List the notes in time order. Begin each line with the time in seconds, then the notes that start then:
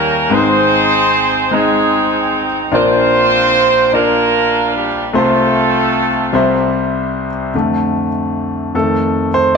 Already playing: D#2 D#3 G3 A#3 C#4 D#4 G4 A#4
0.29 G#1 G#2 G#3 C4 D#4 B4 C5
0.34 D#4 G#4
0.38 C5
1.51 G#3 C4 D#4 G#4 D#5
2.72 A#1 A#2 A#3 C4 D4 F4 C5 D5
3.92 A#3 D4 F4 A#4 D5
4.75 G3 G4
5.13 C2 C3 A3 C4 F4 A4 C5
6.33 C2 C3 G3 C4 C5 E5
7.54 F2 D3 A3
8.74 F2 D#3 A3 A4
9.34 C5